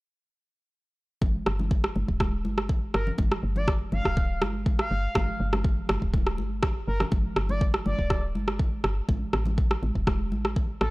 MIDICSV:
0, 0, Header, 1, 4, 480
1, 0, Start_track
1, 0, Tempo, 491803
1, 1190, Time_signature, 4, 2, 24, 8
1, 10641, End_track
2, 0, Start_track
2, 0, Title_t, "Analog synth lead"
2, 0, Program_c, 0, 81
2, 2869, Note_on_c, 0, 70, 88
2, 3012, Note_off_c, 0, 70, 0
2, 3479, Note_on_c, 0, 74, 90
2, 3610, Note_off_c, 0, 74, 0
2, 3833, Note_on_c, 0, 77, 94
2, 4311, Note_off_c, 0, 77, 0
2, 4681, Note_on_c, 0, 77, 98
2, 5348, Note_off_c, 0, 77, 0
2, 6710, Note_on_c, 0, 70, 89
2, 6852, Note_off_c, 0, 70, 0
2, 7316, Note_on_c, 0, 74, 96
2, 7448, Note_off_c, 0, 74, 0
2, 7672, Note_on_c, 0, 74, 90
2, 8038, Note_off_c, 0, 74, 0
2, 10551, Note_on_c, 0, 69, 91
2, 10641, Note_off_c, 0, 69, 0
2, 10641, End_track
3, 0, Start_track
3, 0, Title_t, "FM bass"
3, 0, Program_c, 1, 39
3, 1188, Note_on_c, 1, 31, 90
3, 1354, Note_off_c, 1, 31, 0
3, 1429, Note_on_c, 1, 31, 95
3, 1850, Note_off_c, 1, 31, 0
3, 1910, Note_on_c, 1, 31, 96
3, 1995, Note_off_c, 1, 31, 0
3, 2034, Note_on_c, 1, 26, 99
3, 2387, Note_on_c, 1, 31, 91
3, 2402, Note_off_c, 1, 26, 0
3, 2809, Note_off_c, 1, 31, 0
3, 2870, Note_on_c, 1, 31, 89
3, 3035, Note_off_c, 1, 31, 0
3, 3109, Note_on_c, 1, 31, 94
3, 3275, Note_off_c, 1, 31, 0
3, 3348, Note_on_c, 1, 31, 99
3, 3769, Note_off_c, 1, 31, 0
3, 3828, Note_on_c, 1, 31, 94
3, 3914, Note_off_c, 1, 31, 0
3, 3955, Note_on_c, 1, 26, 94
3, 4308, Note_on_c, 1, 31, 89
3, 4323, Note_off_c, 1, 26, 0
3, 4729, Note_off_c, 1, 31, 0
3, 4791, Note_on_c, 1, 31, 95
3, 4956, Note_off_c, 1, 31, 0
3, 5030, Note_on_c, 1, 31, 100
3, 5195, Note_off_c, 1, 31, 0
3, 5270, Note_on_c, 1, 31, 101
3, 5690, Note_off_c, 1, 31, 0
3, 5749, Note_on_c, 1, 31, 102
3, 5834, Note_off_c, 1, 31, 0
3, 5875, Note_on_c, 1, 26, 96
3, 6229, Note_on_c, 1, 31, 95
3, 6244, Note_off_c, 1, 26, 0
3, 6650, Note_off_c, 1, 31, 0
3, 6711, Note_on_c, 1, 31, 90
3, 6876, Note_off_c, 1, 31, 0
3, 6949, Note_on_c, 1, 31, 95
3, 7115, Note_off_c, 1, 31, 0
3, 7189, Note_on_c, 1, 31, 96
3, 7610, Note_off_c, 1, 31, 0
3, 7670, Note_on_c, 1, 31, 96
3, 7755, Note_off_c, 1, 31, 0
3, 7795, Note_on_c, 1, 26, 93
3, 8150, Note_on_c, 1, 31, 90
3, 8165, Note_off_c, 1, 26, 0
3, 8570, Note_off_c, 1, 31, 0
3, 8630, Note_on_c, 1, 31, 89
3, 8795, Note_off_c, 1, 31, 0
3, 8869, Note_on_c, 1, 33, 93
3, 9035, Note_off_c, 1, 33, 0
3, 9110, Note_on_c, 1, 33, 99
3, 9530, Note_off_c, 1, 33, 0
3, 9591, Note_on_c, 1, 33, 98
3, 9675, Note_off_c, 1, 33, 0
3, 9715, Note_on_c, 1, 28, 95
3, 10070, Note_on_c, 1, 33, 94
3, 10085, Note_off_c, 1, 28, 0
3, 10490, Note_off_c, 1, 33, 0
3, 10551, Note_on_c, 1, 33, 91
3, 10641, Note_off_c, 1, 33, 0
3, 10641, End_track
4, 0, Start_track
4, 0, Title_t, "Drums"
4, 1185, Note_on_c, 9, 64, 105
4, 1188, Note_on_c, 9, 36, 120
4, 1193, Note_on_c, 9, 63, 88
4, 1283, Note_off_c, 9, 64, 0
4, 1286, Note_off_c, 9, 36, 0
4, 1291, Note_off_c, 9, 63, 0
4, 1429, Note_on_c, 9, 37, 90
4, 1526, Note_off_c, 9, 37, 0
4, 1555, Note_on_c, 9, 63, 68
4, 1556, Note_on_c, 9, 64, 98
4, 1653, Note_off_c, 9, 63, 0
4, 1654, Note_off_c, 9, 64, 0
4, 1669, Note_on_c, 9, 36, 120
4, 1766, Note_off_c, 9, 36, 0
4, 1796, Note_on_c, 9, 37, 78
4, 1893, Note_off_c, 9, 37, 0
4, 1908, Note_on_c, 9, 63, 61
4, 2005, Note_off_c, 9, 63, 0
4, 2034, Note_on_c, 9, 36, 63
4, 2132, Note_off_c, 9, 36, 0
4, 2148, Note_on_c, 9, 36, 117
4, 2150, Note_on_c, 9, 37, 89
4, 2151, Note_on_c, 9, 63, 83
4, 2246, Note_off_c, 9, 36, 0
4, 2247, Note_off_c, 9, 37, 0
4, 2249, Note_off_c, 9, 63, 0
4, 2389, Note_on_c, 9, 63, 89
4, 2487, Note_off_c, 9, 63, 0
4, 2515, Note_on_c, 9, 37, 79
4, 2613, Note_off_c, 9, 37, 0
4, 2629, Note_on_c, 9, 36, 110
4, 2726, Note_off_c, 9, 36, 0
4, 2871, Note_on_c, 9, 37, 86
4, 2969, Note_off_c, 9, 37, 0
4, 2995, Note_on_c, 9, 64, 106
4, 3093, Note_off_c, 9, 64, 0
4, 3104, Note_on_c, 9, 64, 115
4, 3109, Note_on_c, 9, 36, 118
4, 3111, Note_on_c, 9, 63, 89
4, 3202, Note_off_c, 9, 64, 0
4, 3206, Note_off_c, 9, 36, 0
4, 3209, Note_off_c, 9, 63, 0
4, 3236, Note_on_c, 9, 37, 81
4, 3334, Note_off_c, 9, 37, 0
4, 3472, Note_on_c, 9, 63, 67
4, 3476, Note_on_c, 9, 64, 92
4, 3570, Note_off_c, 9, 63, 0
4, 3574, Note_off_c, 9, 64, 0
4, 3588, Note_on_c, 9, 36, 116
4, 3590, Note_on_c, 9, 37, 91
4, 3686, Note_off_c, 9, 36, 0
4, 3687, Note_off_c, 9, 37, 0
4, 3826, Note_on_c, 9, 63, 66
4, 3828, Note_on_c, 9, 64, 90
4, 3924, Note_off_c, 9, 63, 0
4, 3925, Note_off_c, 9, 64, 0
4, 3955, Note_on_c, 9, 36, 62
4, 3956, Note_on_c, 9, 37, 79
4, 4053, Note_off_c, 9, 36, 0
4, 4054, Note_off_c, 9, 37, 0
4, 4069, Note_on_c, 9, 36, 120
4, 4167, Note_off_c, 9, 36, 0
4, 4309, Note_on_c, 9, 63, 91
4, 4311, Note_on_c, 9, 37, 93
4, 4407, Note_off_c, 9, 63, 0
4, 4408, Note_off_c, 9, 37, 0
4, 4549, Note_on_c, 9, 36, 121
4, 4552, Note_on_c, 9, 63, 57
4, 4647, Note_off_c, 9, 36, 0
4, 4650, Note_off_c, 9, 63, 0
4, 4676, Note_on_c, 9, 37, 77
4, 4774, Note_off_c, 9, 37, 0
4, 5026, Note_on_c, 9, 64, 114
4, 5029, Note_on_c, 9, 36, 126
4, 5029, Note_on_c, 9, 37, 98
4, 5035, Note_on_c, 9, 63, 96
4, 5123, Note_off_c, 9, 64, 0
4, 5127, Note_off_c, 9, 36, 0
4, 5127, Note_off_c, 9, 37, 0
4, 5133, Note_off_c, 9, 63, 0
4, 5396, Note_on_c, 9, 37, 85
4, 5400, Note_on_c, 9, 64, 93
4, 5402, Note_on_c, 9, 63, 68
4, 5494, Note_off_c, 9, 37, 0
4, 5498, Note_off_c, 9, 64, 0
4, 5500, Note_off_c, 9, 63, 0
4, 5509, Note_on_c, 9, 36, 127
4, 5607, Note_off_c, 9, 36, 0
4, 5749, Note_on_c, 9, 63, 62
4, 5750, Note_on_c, 9, 37, 96
4, 5846, Note_off_c, 9, 63, 0
4, 5847, Note_off_c, 9, 37, 0
4, 5875, Note_on_c, 9, 36, 63
4, 5973, Note_off_c, 9, 36, 0
4, 5989, Note_on_c, 9, 36, 126
4, 5995, Note_on_c, 9, 63, 89
4, 6087, Note_off_c, 9, 36, 0
4, 6093, Note_off_c, 9, 63, 0
4, 6116, Note_on_c, 9, 37, 79
4, 6213, Note_off_c, 9, 37, 0
4, 6229, Note_on_c, 9, 63, 82
4, 6327, Note_off_c, 9, 63, 0
4, 6467, Note_on_c, 9, 37, 97
4, 6468, Note_on_c, 9, 36, 121
4, 6565, Note_off_c, 9, 37, 0
4, 6566, Note_off_c, 9, 36, 0
4, 6834, Note_on_c, 9, 37, 80
4, 6840, Note_on_c, 9, 64, 106
4, 6932, Note_off_c, 9, 37, 0
4, 6938, Note_off_c, 9, 64, 0
4, 6946, Note_on_c, 9, 64, 109
4, 6948, Note_on_c, 9, 63, 96
4, 6949, Note_on_c, 9, 36, 115
4, 7043, Note_off_c, 9, 64, 0
4, 7045, Note_off_c, 9, 63, 0
4, 7046, Note_off_c, 9, 36, 0
4, 7187, Note_on_c, 9, 37, 94
4, 7285, Note_off_c, 9, 37, 0
4, 7312, Note_on_c, 9, 63, 72
4, 7316, Note_on_c, 9, 64, 90
4, 7410, Note_off_c, 9, 63, 0
4, 7413, Note_off_c, 9, 64, 0
4, 7429, Note_on_c, 9, 36, 122
4, 7526, Note_off_c, 9, 36, 0
4, 7554, Note_on_c, 9, 37, 85
4, 7652, Note_off_c, 9, 37, 0
4, 7668, Note_on_c, 9, 64, 75
4, 7669, Note_on_c, 9, 63, 68
4, 7765, Note_off_c, 9, 64, 0
4, 7766, Note_off_c, 9, 63, 0
4, 7795, Note_on_c, 9, 36, 61
4, 7893, Note_off_c, 9, 36, 0
4, 7907, Note_on_c, 9, 37, 94
4, 7908, Note_on_c, 9, 36, 123
4, 8005, Note_off_c, 9, 37, 0
4, 8006, Note_off_c, 9, 36, 0
4, 8151, Note_on_c, 9, 63, 86
4, 8249, Note_off_c, 9, 63, 0
4, 8274, Note_on_c, 9, 37, 78
4, 8372, Note_off_c, 9, 37, 0
4, 8388, Note_on_c, 9, 36, 114
4, 8394, Note_on_c, 9, 63, 54
4, 8486, Note_off_c, 9, 36, 0
4, 8492, Note_off_c, 9, 63, 0
4, 8628, Note_on_c, 9, 37, 92
4, 8725, Note_off_c, 9, 37, 0
4, 8867, Note_on_c, 9, 64, 95
4, 8868, Note_on_c, 9, 36, 111
4, 8872, Note_on_c, 9, 63, 89
4, 8965, Note_off_c, 9, 64, 0
4, 8966, Note_off_c, 9, 36, 0
4, 8970, Note_off_c, 9, 63, 0
4, 9108, Note_on_c, 9, 37, 91
4, 9206, Note_off_c, 9, 37, 0
4, 9228, Note_on_c, 9, 64, 90
4, 9237, Note_on_c, 9, 63, 65
4, 9325, Note_off_c, 9, 64, 0
4, 9334, Note_off_c, 9, 63, 0
4, 9349, Note_on_c, 9, 36, 121
4, 9447, Note_off_c, 9, 36, 0
4, 9476, Note_on_c, 9, 37, 78
4, 9573, Note_off_c, 9, 37, 0
4, 9590, Note_on_c, 9, 63, 61
4, 9688, Note_off_c, 9, 63, 0
4, 9715, Note_on_c, 9, 36, 62
4, 9813, Note_off_c, 9, 36, 0
4, 9829, Note_on_c, 9, 36, 121
4, 9831, Note_on_c, 9, 37, 91
4, 9833, Note_on_c, 9, 63, 95
4, 9927, Note_off_c, 9, 36, 0
4, 9928, Note_off_c, 9, 37, 0
4, 9931, Note_off_c, 9, 63, 0
4, 10071, Note_on_c, 9, 63, 85
4, 10169, Note_off_c, 9, 63, 0
4, 10198, Note_on_c, 9, 37, 78
4, 10295, Note_off_c, 9, 37, 0
4, 10310, Note_on_c, 9, 36, 112
4, 10407, Note_off_c, 9, 36, 0
4, 10551, Note_on_c, 9, 37, 91
4, 10641, Note_off_c, 9, 37, 0
4, 10641, End_track
0, 0, End_of_file